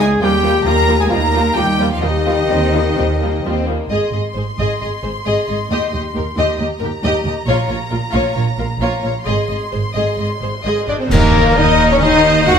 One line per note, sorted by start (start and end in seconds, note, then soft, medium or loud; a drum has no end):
0.00 0.16 C#2 medium
0.00 0.21 G#3 medium
0.00 0.22 G#4 medium
0.20 0.61 D#2 medium
0.20 0.30 F3 medium
0.20 0.66 G3 medium
0.20 0.30 G3 medium
0.20 0.29 A#3 medium
0.20 0.29 F4 medium
0.20 0.68 G4 medium
0.20 0.66 G5 medium
0.25 1.12 G4 medium
0.43 0.51 F3 soft
0.43 0.52 G3 medium
0.43 0.51 A#3 soft
0.43 0.51 F4 medium
0.65 1.06 D#2 medium
0.65 0.74 F3 soft
0.65 0.74 G3 medium
0.65 0.74 A#3 medium
0.65 1.00 A#3 medium
0.65 0.73 F4 soft
0.65 0.99 A#4 medium
0.65 0.99 A#5 medium
0.88 0.96 F3 soft
0.88 0.96 G3 soft
0.88 0.96 A#3 soft
0.88 0.96 F4 medium
1.00 1.05 G#3 medium
1.00 1.10 G#4 medium
1.00 1.12 G#5 medium
1.10 1.52 D#2 medium
1.10 1.18 F3 medium
1.10 1.18 G3 medium
1.10 1.56 A#3 medium
1.10 1.20 A#3 medium
1.10 1.85 D#4 medium
1.10 1.19 F4 medium
1.10 1.55 A#4 medium
1.10 1.56 A#5 medium
1.33 1.41 F3 soft
1.33 1.41 G3 soft
1.33 1.43 A#3 soft
1.33 1.43 F4 soft
1.56 1.98 D#2 medium
1.56 1.64 F3 soft
1.56 1.64 G3 soft
1.56 1.92 G3 medium
1.56 1.64 A#3 soft
1.56 1.65 F4 soft
1.56 1.90 G4 medium
1.56 1.91 G5 medium
1.79 1.87 F3 soft
1.79 1.87 G3 soft
1.79 1.89 A#3 soft
1.79 1.89 F4 soft
1.91 2.03 F3 soft
1.91 2.04 F4 soft
1.91 2.04 F5 medium
2.02 2.45 D#2 medium
2.02 3.67 D#3 medium
2.02 2.10 F3 soft
2.02 2.10 G3 soft
2.02 2.10 A#3 medium
2.02 3.66 D#4 medium
2.02 2.10 F4 soft
2.02 3.62 G4 medium
2.02 3.64 D#5 medium
2.26 2.34 F3 soft
2.26 2.34 G3 soft
2.26 2.34 A#3 soft
2.26 2.35 F4 soft
2.49 2.91 D#2 medium
2.49 2.58 F3 soft
2.49 2.57 G3 soft
2.49 2.72 C4 medium
2.73 2.82 F3 soft
2.73 2.82 G3 soft
2.73 2.97 A#3 soft
2.95 3.38 D#2 medium
2.95 3.04 F3 soft
2.95 3.05 G3 soft
2.95 3.03 C4 medium
3.20 3.30 F3 soft
3.20 3.29 G3 soft
3.20 3.43 A#3 soft
3.44 3.84 D#2 soft
3.44 3.53 F3 soft
3.44 3.53 G3 soft
3.44 3.66 C4 medium
3.66 3.77 F3 soft
3.66 3.77 G3 soft
3.66 3.89 A#3 soft
3.89 3.97 G#1 soft
3.89 3.98 G#2 soft
3.89 4.11 G#4 soft
3.89 4.11 D#5 soft
3.89 6.54 C6 soft
4.13 4.21 G#1 soft
4.13 4.21 G#2 soft
4.13 4.22 G#4 soft
4.13 4.21 D#5 soft
4.35 4.43 G#1 soft
4.35 4.43 G#2 soft
4.35 4.45 G#4 soft
4.35 4.43 C5 soft
4.57 4.67 G#1 soft
4.57 4.65 G#2 soft
4.57 4.79 G#4 soft
4.57 4.79 D#5 soft
4.80 4.90 G#1 soft
4.80 4.88 G#2 soft
4.80 4.89 G#4 soft
4.80 4.88 D#5 soft
5.03 5.12 G#1 soft
5.03 5.11 G#2 soft
5.03 5.11 G#4 soft
5.03 5.11 C5 soft
5.25 5.35 G#1 soft
5.25 5.33 G#2 soft
5.25 5.46 G#4 soft
5.25 5.46 D#5 soft
5.48 5.57 G#1 soft
5.48 5.57 G#2 soft
5.48 5.56 G#4 soft
5.48 5.57 D#5 soft
5.70 5.78 D#2 soft
5.70 5.80 D#2 soft
5.70 5.91 G4 soft
5.70 5.91 D#5 soft
5.92 6.00 D#2 soft
5.92 6.02 D#2 soft
5.92 6.03 G4 soft
5.92 6.01 D#5 soft
6.14 6.22 D#2 soft
6.14 6.24 D#2 soft
6.14 6.23 G4 soft
6.14 6.24 A#4 soft
6.36 6.44 D#2 medium
6.36 6.46 D#2 medium
6.36 6.58 G4 soft
6.36 6.57 D#5 medium
6.58 6.66 D#2 soft
6.58 6.68 D#2 soft
6.58 6.69 G4 soft
6.58 6.66 D#5 soft
6.58 9.28 A#5 soft
6.79 6.88 D#2 soft
6.79 6.90 D#2 soft
6.79 6.90 G4 soft
6.79 6.87 A#4 soft
7.03 7.11 D#2 medium
7.03 7.12 D#2 medium
7.03 7.24 G4 medium
7.03 7.24 D#5 medium
7.25 7.33 D#2 soft
7.25 7.34 G4 soft
7.25 7.34 D#5 soft
7.47 7.55 A#1 medium
7.47 7.55 A#2 medium
7.47 7.68 F4 medium
7.47 7.67 C#5 medium
7.69 7.78 A#1 soft
7.69 7.77 A#2 soft
7.69 7.77 F4 soft
7.69 7.78 C#5 soft
7.90 8.00 A#1 soft
7.90 7.99 A#2 soft
7.90 7.99 F4 soft
7.90 7.98 A#4 soft
8.12 8.22 A#1 medium
8.12 8.21 A#2 medium
8.12 8.33 F4 medium
8.12 8.34 C#5 medium
8.35 8.44 A#1 soft
8.35 8.44 A#2 soft
8.35 8.43 F4 soft
8.35 8.45 C#5 soft
8.58 8.67 A#1 soft
8.58 8.66 A#2 soft
8.58 8.66 F4 soft
8.58 8.67 A#4 soft
8.80 8.88 A#1 medium
8.80 8.89 A#2 soft
8.80 9.02 F4 medium
8.80 9.03 C#5 soft
9.04 9.12 A#1 soft
9.04 9.12 A#2 soft
9.04 9.12 F4 soft
9.04 9.12 C#5 soft
9.26 9.35 G#1 soft
9.26 9.35 G#2 soft
9.26 9.48 G#4 soft
9.26 9.48 D#5 soft
9.26 10.84 C6 soft
9.49 9.57 G#1 soft
9.49 9.58 G#2 soft
9.49 9.58 G#4 soft
9.49 9.57 D#5 soft
9.72 9.82 G#1 soft
9.72 9.81 G#2 soft
9.72 9.81 G#4 soft
9.72 9.80 C5 soft
9.94 10.04 G#1 soft
9.94 10.05 G#2 soft
9.94 10.17 G#4 soft
9.94 10.16 D#5 soft
10.18 10.26 G#1 soft
10.18 10.28 G#2 soft
10.18 10.28 G#4 soft
10.18 10.27 D#5 soft
10.42 10.50 G#1 soft
10.42 10.50 G#2 soft
10.42 10.51 G#4 soft
10.42 10.50 C5 soft
10.64 10.73 G#1 soft
10.64 10.73 G#2 soft
10.64 10.87 G#4 soft
10.64 10.86 D#5 soft
10.88 10.96 G#1 soft
10.88 10.97 G#2 soft
10.88 10.99 D4 medium
10.88 10.99 D4 soft
10.88 10.97 G#4 soft
10.88 10.92 D5 soft
10.88 10.94 D5 soft
10.88 10.99 D5 soft
10.88 10.96 D#5 soft
11.00 11.11 C4 soft
11.00 11.05 C4 soft
11.00 11.11 C5 soft
11.00 11.14 C5 medium
11.11 11.51 D#2 medium
11.11 11.51 D#3 medium
11.11 11.56 A#3 medium
11.11 11.57 A#3 loud
11.11 11.57 A#4 medium
11.11 11.59 A#4 medium
11.11 11.98 A#4 medium
11.11 11.56 A#4 medium
11.11 concert bass drum medium
11.11 crash medium
11.56 11.96 D#2 medium
11.56 11.97 D#2 medium
11.56 11.97 D#3 medium
11.56 11.89 D#4 medium
11.56 11.91 D#4 loud
11.56 11.90 D#5 medium
11.56 11.91 D#5 medium
11.91 12.02 C#4 medium
11.91 12.03 C#4 medium
11.91 12.01 C#5 medium
11.91 12.02 C#5 medium
11.91 12.00 C#5 medium
12.01 12.42 D#2 medium
12.01 12.41 D#3 medium
12.01 12.46 D#4 loud
12.01 12.47 D#4 loud
12.01 12.59 C5 medium
12.01 12.46 D#5 medium
12.01 12.45 D#5 loud
12.01 12.45 D#5 medium
12.46 12.59 D#2 medium
12.46 12.59 D#3 medium
12.46 12.59 F#4 loud
12.46 12.59 F#5 medium
12.46 12.59 F#5 loud
12.46 12.59 F#5 medium